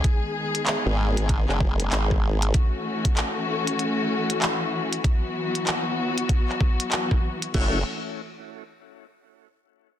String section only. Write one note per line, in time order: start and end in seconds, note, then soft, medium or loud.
0.00 2.50 G#4 medium
0.05 2.52 D#3 medium
0.05 2.52 G#3 medium
0.05 2.52 B3 medium
2.54 7.50 E3 medium
2.54 5.02 A3 medium
2.54 5.02 C#4 medium
2.54 5.02 F#4 medium
5.04 7.52 F#3 medium
5.04 7.52 B3 medium
5.04 7.52 F#4 medium
7.55 7.84 E3 medium
7.55 7.84 A3 medium
7.55 7.84 C#4 medium
7.55 7.84 F#4 medium